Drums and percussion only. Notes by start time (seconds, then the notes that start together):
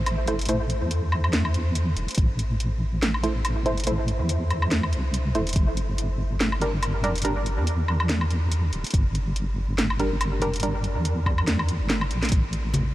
0.06 closed hi-hat, low woodblock
0.27 closed hi-hat
0.39 closed hi-hat
0.41 closed hi-hat
0.45 closed hi-hat
0.49 closed hi-hat
0.70 closed hi-hat
0.91 closed hi-hat
1.12 low woodblock
1.24 low woodblock
1.33 snare, closed hi-hat
1.45 low woodblock
1.54 closed hi-hat
1.75 closed hi-hat
1.97 closed hi-hat
2.08 closed hi-hat
2.11 closed hi-hat
2.15 kick, closed hi-hat
2.18 closed hi-hat
2.39 closed hi-hat
2.60 closed hi-hat
3.02 snare, closed hi-hat
3.14 low woodblock
3.24 closed hi-hat
3.45 closed hi-hat, low woodblock
3.66 closed hi-hat
3.78 closed hi-hat
3.80 closed hi-hat
3.84 closed hi-hat
3.87 closed hi-hat
4.08 closed hi-hat
4.29 closed hi-hat
4.50 closed hi-hat, low woodblock
4.62 low woodblock
4.71 snare, closed hi-hat
4.83 low woodblock
4.93 closed hi-hat
5.14 closed hi-hat
5.35 closed hi-hat
5.47 closed hi-hat
5.49 closed hi-hat
5.53 closed hi-hat
5.56 kick, closed hi-hat
5.77 closed hi-hat
5.98 closed hi-hat
6.40 snare, closed hi-hat
6.52 low woodblock
6.61 closed hi-hat
6.83 closed hi-hat, low woodblock
7.04 closed hi-hat
7.16 closed hi-hat
7.18 closed hi-hat
7.22 closed hi-hat
7.25 closed hi-hat
7.46 closed hi-hat
7.67 closed hi-hat
7.88 low woodblock
8.00 low woodblock
8.09 snare, closed hi-hat
8.21 low woodblock
8.30 closed hi-hat
8.52 closed hi-hat
8.73 closed hi-hat
8.84 closed hi-hat
8.87 closed hi-hat
8.91 kick, closed hi-hat
8.94 closed hi-hat
9.15 closed hi-hat
9.36 closed hi-hat
9.78 snare, closed hi-hat
9.90 low woodblock
9.99 closed hi-hat
10.21 closed hi-hat, low woodblock
10.42 closed hi-hat
10.54 closed hi-hat
10.56 closed hi-hat
10.60 closed hi-hat
10.63 closed hi-hat
10.84 closed hi-hat
11.05 closed hi-hat
11.26 kick, low woodblock
11.38 low woodblock
11.48 snare, closed hi-hat
11.59 low woodblock
11.68 closed hi-hat
11.90 snare, closed hi-hat
12.01 low woodblock
12.11 closed hi-hat
12.23 snare, closed hi-hat
12.25 closed hi-hat
12.29 closed hi-hat
12.32 kick, closed hi-hat
12.53 closed hi-hat
12.74 closed hi-hat, high conga